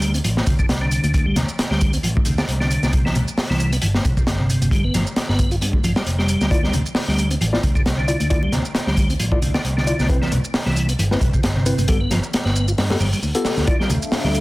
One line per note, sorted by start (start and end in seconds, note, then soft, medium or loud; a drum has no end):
0.00 0.19 D2 medium
0.00 0.13 G3 medium
0.00 closed hi-hat medium
0.00 high conga medium
0.00 shaker medium
0.14 0.18 C4 medium
0.14 closed hi-hat soft
0.14 shaker soft
0.24 0.40 A1 medium
0.24 0.29 F3 medium
0.24 closed hi-hat medium
0.24 shaker soft
0.37 snare medium
0.37 high conga medium
0.47 0.59 D2 loud
0.47 0.55 C3 loud
0.47 kick medium
0.47 closed hi-hat medium
0.47 low conga medium
0.47 shaker medium
0.59 0.66 D3 medium
0.59 muted picked electric bass stroke soft
0.59 kick medium
0.59 shaker soft
0.69 0.97 C2 medium
0.69 snare loud
0.69 closed hi-hat medium
0.69 high conga medium
0.69 shaker soft
0.81 1.13 D3 loud
0.91 closed hi-hat medium
0.91 shaker medium
1.03 1.31 D2 medium
1.03 closed hi-hat soft
1.03 high conga loud
1.03 shaker soft
1.14 1.26 D3 loud
1.14 kick loud
1.14 closed hi-hat medium
1.14 shaker soft
1.26 1.36 G3 medium
1.36 1.44 D2 loud
1.36 1.45 C3 loud
1.36 snare soft
1.36 closed hi-hat medium
1.36 high conga medium
1.36 low conga loud
1.36 shaker medium
1.49 shaker soft
1.59 snare loud
1.59 closed hi-hat medium
1.59 shaker soft
1.71 1.98 D2 loud
1.71 1.92 G3 loud
1.71 snare medium
1.81 kick medium
1.81 closed hi-hat medium
1.81 high conga medium
1.81 shaker medium
1.93 1.97 C4 medium
1.93 closed hi-hat soft
1.93 shaker soft
2.03 2.19 A1 medium
2.03 2.08 F3 medium
2.03 closed hi-hat medium
2.03 shaker soft
2.15 kick medium
2.15 high conga medium
2.25 2.38 D2 medium
2.25 2.34 C3 medium
2.25 closed hi-hat medium
2.25 low conga medium
2.25 shaker medium
2.38 2.45 D3 medium
2.38 muted picked electric bass stroke soft
2.38 snare loud
2.38 shaker soft
2.48 2.76 C2 medium
2.48 closed hi-hat medium
2.48 high conga medium
2.48 shaker soft
2.60 2.92 D3 loud
2.60 snare soft
2.71 closed hi-hat medium
2.71 shaker medium
2.83 3.10 C2 medium
2.83 snare soft
2.83 high conga medium
2.83 shaker soft
2.93 3.05 C3 loud
2.93 kick loud
2.93 closed hi-hat medium
2.93 shaker soft
3.05 3.15 E3 medium
3.05 snare soft
3.15 3.24 C2 loud
3.15 3.24 B2 loud
3.15 closed hi-hat medium
3.15 high conga loud
3.15 low conga medium
3.15 shaker medium
3.28 shaker soft
3.38 snare loud
3.38 open hi-hat medium
3.38 shaker soft
3.50 3.77 C2 medium
3.50 3.71 E3 loud
3.50 snare soft
3.60 closed hi-hat medium
3.60 high conga medium
3.60 shaker medium
3.73 3.77 B3 medium
3.73 closed hi-hat soft
3.73 shaker soft
3.82 3.98 G1 medium
3.82 3.88 E3 medium
3.82 closed hi-hat medium
3.82 shaker soft
3.94 snare medium
3.94 high conga medium
4.05 4.16 C2 loud
4.05 4.13 B2 medium
4.05 kick medium
4.05 closed hi-hat medium
4.05 low conga medium
4.05 shaker medium
4.17 4.24 C3 medium
4.17 muted picked electric bass stroke soft
4.17 kick medium
4.17 shaker soft
4.27 4.55 G1 medium
4.27 snare loud
4.27 closed hi-hat medium
4.27 high conga medium
4.27 shaker soft
4.40 4.71 C3 loud
4.50 closed hi-hat medium
4.50 shaker medium
4.61 4.89 G1 medium
4.61 closed hi-hat soft
4.61 high conga medium
4.61 shaker soft
4.71 4.84 G3 loud
4.71 kick medium
4.71 closed hi-hat medium
4.71 shaker soft
4.84 4.94 B3 medium
4.94 5.03 G1 medium
4.94 5.03 F3 loud
4.94 snare soft
4.94 closed hi-hat medium
4.94 high conga loud
4.94 low conga medium
4.94 shaker medium
5.07 shaker soft
5.16 snare loud
5.16 closed hi-hat medium
5.16 shaker soft
5.29 5.56 G1 medium
5.29 5.50 B3 medium
5.29 snare soft
5.39 kick medium
5.39 closed hi-hat medium
5.39 high conga medium
5.39 shaker medium
5.51 5.56 F4 medium
5.51 closed hi-hat soft
5.51 shaker soft
5.61 5.77 G2 medium
5.61 5.67 B3 medium
5.61 closed hi-hat medium
5.61 shaker soft
5.73 kick medium
5.73 high conga medium
5.84 5.96 G1 medium
5.84 5.93 F3 medium
5.84 closed hi-hat medium
5.84 low conga loud
5.84 shaker medium
5.96 6.03 G3 medium
5.96 muted picked electric bass stroke soft
5.96 snare loud
5.96 shaker soft
6.06 6.34 F1 medium
6.06 closed hi-hat loud
6.06 high conga medium
6.06 shaker soft
6.19 6.50 G3 loud
6.19 snare soft
6.28 closed hi-hat medium
6.28 shaker medium
6.41 6.68 D2 medium
6.41 snare soft
6.41 high conga medium
6.41 shaker soft
6.51 6.63 D3 loud
6.51 6.58 E4 medium
6.51 6.58 F4 medium
6.51 6.58 D5 medium
6.51 kick loud
6.51 closed hi-hat medium
6.51 muted conga soft
6.51 shaker soft
6.63 6.73 G3 medium
6.63 snare soft
6.73 6.82 D2 loud
6.73 6.82 C3 loud
6.73 closed hi-hat medium
6.73 muted conga medium
6.73 high conga loud
6.73 low conga loud
6.73 shaker medium
6.86 shaker soft
6.95 snare loud
6.95 open hi-hat medium
6.95 shaker soft
7.08 7.35 D2 medium
7.08 7.29 G3 loud
7.08 snare soft
7.08 muted conga soft
7.19 closed hi-hat medium
7.19 high conga medium
7.19 shaker medium
7.30 7.35 C4 medium
7.30 closed hi-hat soft
7.30 muted conga medium
7.30 shaker soft
7.41 7.56 A1 medium
7.41 7.46 F3 medium
7.41 closed hi-hat medium
7.41 shaker soft
7.53 7.59 E4 medium
7.53 7.59 F4 medium
7.53 7.59 D5 medium
7.53 snare medium
7.53 high conga medium
7.63 7.75 D2 loud
7.63 7.72 C3 medium
7.63 kick medium
7.63 closed hi-hat medium
7.63 muted conga medium
7.63 low conga medium
7.63 shaker medium
7.75 7.82 D3 medium
7.75 muted picked electric bass stroke soft
7.75 kick loud
7.75 shaker soft
7.86 8.13 C2 medium
7.86 snare loud
7.86 closed hi-hat medium
7.86 muted conga medium
7.86 high conga medium
7.86 shaker soft
7.98 8.29 D3 loud
8.08 8.15 E4 medium
8.08 8.15 F4 medium
8.08 8.15 D5 medium
8.08 closed hi-hat medium
8.08 shaker medium
8.20 8.47 D2 medium
8.20 closed hi-hat soft
8.20 muted conga soft
8.20 high conga medium
8.20 shaker soft
8.30 8.42 D3 loud
8.30 8.38 E4 medium
8.30 8.38 F4 medium
8.30 8.38 D5 medium
8.30 kick loud
8.30 closed hi-hat medium
8.30 shaker soft
8.43 8.52 G3 medium
8.43 muted conga medium
8.52 8.61 D2 loud
8.52 8.61 C3 loud
8.52 snare soft
8.52 closed hi-hat medium
8.52 high conga medium
8.52 low conga medium
8.52 shaker medium
8.65 shaker soft
8.75 snare loud
8.75 closed hi-hat medium
8.75 muted conga soft
8.75 shaker soft
8.87 9.14 D2 loud
8.87 9.09 G3 loud
8.87 snare medium
8.97 kick medium
8.97 closed hi-hat medium
8.97 muted conga medium
8.97 high conga medium
8.97 shaker medium
9.10 9.14 C4 medium
9.10 closed hi-hat soft
9.10 shaker soft
9.20 9.35 A1 medium
9.20 9.25 F3 medium
9.20 closed hi-hat medium
9.20 shaker soft
9.32 9.38 E4 medium
9.32 9.38 F4 medium
9.32 9.38 D5 medium
9.32 kick medium
9.32 muted conga soft
9.32 high conga medium
9.42 9.54 D2 loud
9.42 9.51 C3 loud
9.42 closed hi-hat medium
9.42 low conga medium
9.42 shaker medium
9.54 9.62 D3 medium
9.54 muted picked electric bass stroke soft
9.54 snare loud
9.54 muted conga medium
9.54 shaker soft
9.64 9.93 C2 medium
9.64 closed hi-hat medium
9.64 high conga medium
9.64 shaker soft
9.77 10.08 D3 loud
9.77 snare soft
9.87 9.94 E4 medium
9.87 9.94 F4 medium
9.87 9.94 D5 medium
9.87 closed hi-hat medium
9.87 muted conga soft
9.87 shaker medium
9.99 10.26 C2 medium
9.99 snare soft
9.99 high conga medium
9.99 shaker soft
10.08 10.21 C3 loud
10.08 10.17 C4 medium
10.08 10.17 E4 medium
10.08 10.17 B4 medium
10.08 kick loud
10.08 closed hi-hat medium
10.08 muted conga medium
10.08 shaker soft
10.22 10.31 E3 medium
10.22 snare soft
10.32 10.40 C2 medium
10.32 10.40 B2 loud
10.32 closed hi-hat medium
10.32 high conga medium
10.32 low conga loud
10.32 shaker medium
10.44 muted conga medium
10.44 shaker soft
10.54 snare loud
10.54 open hi-hat medium
10.54 shaker soft
10.66 10.93 C2 medium
10.66 10.88 E3 loud
10.66 snare soft
10.66 muted conga medium
10.77 closed hi-hat medium
10.77 high conga medium
10.77 shaker medium
10.89 10.93 B3 medium
10.89 closed hi-hat soft
10.89 shaker soft
10.99 11.14 G1 loud
10.99 11.04 E3 medium
10.99 closed hi-hat medium
10.99 muted conga medium
10.99 shaker soft
11.11 11.17 C4 medium
11.11 11.17 E4 medium
11.11 11.17 B4 medium
11.11 snare medium
11.11 high conga medium
11.21 11.33 C2 medium
11.21 11.30 B2 loud
11.21 kick medium
11.21 closed hi-hat medium
11.21 muted conga medium
11.21 low conga medium
11.21 shaker medium
11.33 11.41 C3 medium
11.33 muted picked electric bass stroke soft
11.33 kick medium
11.33 shaker soft
11.43 11.72 G1 medium
11.43 snare loud
11.43 closed hi-hat medium
11.43 high conga medium
11.43 shaker soft
11.56 11.87 C3 loud
11.56 muted conga medium
11.66 11.73 C4 medium
11.66 11.73 E4 medium
11.66 11.73 B4 medium
11.66 closed hi-hat medium
11.66 shaker medium
11.78 12.05 G1 medium
11.78 closed hi-hat soft
11.78 muted conga medium
11.78 high conga medium
11.78 shaker soft
11.88 12.00 G3 loud
11.88 11.96 B3 medium
11.88 11.96 G4 medium
11.88 11.96 A4 medium
11.88 kick loud
11.88 closed hi-hat medium
11.88 shaker soft
12.01 12.10 B3 medium
12.11 12.19 G1 medium
12.11 12.19 F3 loud
12.11 snare soft
12.11 closed hi-hat medium
12.11 muted conga medium
12.11 high conga medium
12.11 low conga loud
12.11 shaker medium
12.23 shaker soft
12.33 snare loud
12.33 closed hi-hat medium
12.33 muted conga medium
12.33 shaker soft
12.45 12.72 G1 loud
12.45 12.67 B3 loud
12.45 snare soft
12.56 high conga medium
12.56 shaker medium
12.68 12.72 F4 medium
12.68 muted conga medium
12.68 shaker soft
12.78 12.93 G2 medium
12.78 12.83 B3 medium
12.78 snare loud
12.78 open hi-hat medium
12.78 shaker soft
12.90 12.96 B3 medium
12.90 12.96 G4 medium
12.90 12.96 A4 medium
12.90 snare loud
12.90 open hi-hat medium
12.90 muted conga medium
12.90 high conga medium
13.00 13.12 G1 loud
13.00 13.09 G3 medium
13.00 low conga medium
13.00 shaker medium
13.13 13.20 G3 medium
13.13 muted picked electric bass stroke soft
13.13 shaker soft
13.23 13.31 D2 medium
13.23 muted conga medium
13.23 high conga medium
13.23 shaker soft
13.35 13.65 B3 medium
13.35 13.44 F4 medium
13.35 13.65 G4 medium
13.35 13.65 A4 loud
13.35 closed hi-hat medium
13.45 snare medium
13.45 open hi-hat medium
13.45 muted conga medium
13.45 shaker medium
13.57 13.64 D2 medium
13.57 snare soft
13.57 high conga medium
13.57 shaker soft
13.67 13.79 D3 loud
13.67 14.40 D4 medium
13.67 13.75 E4 medium
13.67 13.75 F4 medium
13.67 14.40 A4 medium
13.67 13.75 D5 medium
13.67 14.40 E5 medium
13.67 14.40 F5 medium
13.67 kick loud
13.67 closed hi-hat medium
13.67 muted conga medium
13.67 shaker soft
13.80 13.89 G3 medium
13.80 snare soft
13.90 13.98 D2 medium
13.90 13.98 C3 loud
13.90 closed hi-hat medium
13.90 muted conga medium
13.90 high conga medium
13.90 low conga loud
13.90 shaker medium
14.02 shaker soft
14.12 snare loud
14.12 open hi-hat medium
14.12 shaker soft
14.24 14.40 D2 loud
14.24 14.40 G3 medium
14.24 snare soft
14.24 muted conga medium
14.35 closed hi-hat medium
14.35 high conga medium
14.35 shaker medium